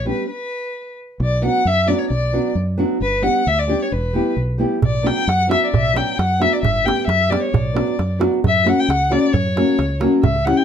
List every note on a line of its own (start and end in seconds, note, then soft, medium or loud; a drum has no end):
0.00 0.11 A#1 medium
0.05 0.24 G3 medium
0.05 0.24 B3 medium
0.05 0.25 D4 medium
0.05 0.25 G4 medium
0.05 0.28 B4 medium
0.30 0.93 B4 medium
1.20 1.47 B1 loud
1.20 1.43 D5 medium
1.42 1.61 F#3 medium
1.42 1.61 B3 medium
1.42 1.62 D4 medium
1.42 1.62 F#4 medium
1.42 1.69 F#5 medium
1.65 1.92 F#2 medium
1.65 1.89 E5 loud
1.86 2.06 F#3 medium
1.86 2.06 B3 medium
1.86 2.07 D4 medium
1.86 2.07 F#4 medium
1.86 2.00 D5 medium
1.99 2.09 C#5 medium
2.10 2.37 B1 medium
2.10 2.52 D5 medium
2.33 2.52 F#3 medium
2.33 2.52 B3 medium
2.33 2.52 D4 medium
2.33 2.52 F#4 medium
2.55 2.83 F#2 medium
2.77 2.97 F#3 medium
2.77 2.97 B3 medium
2.77 2.97 D4 medium
2.77 2.97 F#4 medium
3.00 3.28 G1 medium
3.00 3.24 B4 loud
3.22 3.41 G3 medium
3.22 3.41 B3 medium
3.22 3.42 D4 medium
3.22 3.42 G4 medium
3.22 3.49 F#5 medium
3.47 3.74 D2 medium
3.47 3.60 E5 loud
3.59 3.84 D5 medium
3.67 3.87 G3 medium
3.67 3.87 B3 medium
3.67 3.88 D4 medium
3.67 3.88 G4 medium
3.82 3.94 C#5 medium
3.92 4.19 E1 medium
3.92 4.37 B4 medium
4.13 4.33 G3 medium
4.13 4.33 B3 medium
4.13 4.33 E4 medium
4.13 4.34 G4 medium
4.37 4.64 B1 medium
4.58 4.78 G3 medium
4.58 4.78 B3 medium
4.58 4.78 E4 medium
4.58 4.79 G4 medium
4.82 5.09 B1 medium
4.82 5.08 D5 medium
4.82 darbuka dum medium
4.95 darbuka tek soft
5.03 5.22 F#3 medium
5.03 5.23 B3 medium
5.03 5.23 D4 medium
5.03 5.23 F#4 medium
5.03 5.30 G5 medium
5.07 darbuka tek medium
5.18 darbuka tek soft
5.27 5.55 F#2 medium
5.27 5.51 F#5 loud
5.27 darbuka tek medium
5.41 darbuka tek soft
5.47 5.67 F#3 medium
5.47 5.68 B3 medium
5.47 5.68 D4 medium
5.47 5.69 F#4 medium
5.47 darbuka tek medium
5.51 5.65 E5 medium
5.63 5.66 D5 medium
5.63 5.70 E5 medium
5.68 5.73 D5 medium
5.73 6.00 B1 medium
5.73 5.98 E5 loud
5.73 darbuka dum medium
5.86 darbuka tek soft
5.93 6.13 F#3 medium
5.93 6.14 B3 medium
5.93 6.14 D4 medium
5.93 6.14 F#4 medium
5.93 6.20 G5 medium
5.93 darbuka tek medium
6.08 darbuka tek soft
6.18 6.46 F#2 medium
6.18 6.43 F#5 medium
6.18 darbuka tek medium
6.30 darbuka tek soft
6.39 6.58 F#3 medium
6.39 6.59 B3 medium
6.39 6.59 D4 medium
6.39 6.59 F#4 medium
6.39 6.55 E5 loud
6.39 darbuka tek medium
6.53 6.62 D5 medium
6.63 6.90 G1 loud
6.63 6.87 E5 medium
6.63 darbuka dum medium
6.76 darbuka tek soft
6.84 7.04 G3 medium
6.84 7.04 B3 medium
6.84 7.04 D4 medium
6.84 7.05 G4 medium
6.84 7.07 G5 medium
6.84 darbuka tek medium
6.99 darbuka tek soft
7.07 7.35 F#2 medium
7.07 7.32 E5 loud
7.07 darbuka tek medium
7.21 darbuka tek soft
7.29 7.49 G3 medium
7.29 7.49 B3 medium
7.29 7.49 D4 medium
7.29 7.49 G4 medium
7.29 7.40 D5 medium
7.29 darbuka tek medium
7.40 7.54 C#5 medium
7.40 7.41 D5 medium
7.52 7.81 B1 loud
7.52 8.20 D5 medium
7.52 darbuka dum loud
7.66 darbuka tek soft
7.74 7.93 F#3 medium
7.74 7.94 B3 medium
7.74 7.94 D4 medium
7.74 7.94 F#4 medium
7.74 darbuka tek medium
7.87 darbuka tek soft
7.99 8.26 F#2 medium
7.99 darbuka tek medium
8.19 8.39 F#3 medium
8.19 8.39 B3 medium
8.19 8.39 D4 medium
8.19 8.39 F#4 medium
8.19 darbuka tek medium
8.34 darbuka tek soft
8.44 8.71 F#2 medium
8.44 8.71 E5 loud
8.44 darbuka dum medium
8.56 darbuka tek soft
8.64 8.84 F#3 medium
8.64 8.84 A#3 medium
8.64 8.84 C#4 medium
8.64 8.85 F#4 medium
8.64 darbuka tek medium
8.69 8.81 F#5 medium
8.79 8.91 G5 loud
8.79 darbuka tek soft
8.88 9.16 C#2 medium
8.88 9.14 F#5 loud
8.88 darbuka tek medium
9.09 9.29 F#3 medium
9.09 9.29 A#3 medium
9.09 9.29 C#4 medium
9.09 9.30 F#4 medium
9.09 9.34 D5 loud
9.09 darbuka tek medium
9.33 9.61 F#2 loud
9.33 10.01 C#5 medium
9.33 darbuka dum medium
9.46 darbuka tek soft
9.56 9.75 F#3 medium
9.56 9.75 A#3 medium
9.56 9.75 C#4 medium
9.56 9.76 F#4 medium
9.56 darbuka tek medium
9.69 darbuka tek soft
9.79 10.06 C#2 medium
9.79 darbuka tek medium
10.00 10.20 F#3 medium
10.00 10.20 A#3 medium
10.00 10.20 C#4 medium
10.00 10.21 F#4 medium
10.00 darbuka tek medium
10.12 darbuka tek soft
10.23 10.52 C#2 medium
10.23 10.47 E5 medium
10.23 darbuka dum medium
10.36 darbuka tek soft
10.45 10.64 G3 medium
10.45 10.64 C#4 medium
10.45 10.64 E4 medium
10.45 10.64 G4 medium
10.45 10.59 F#5 medium
10.45 darbuka tek medium
10.57 10.64 G5 loud
10.57 darbuka tek soft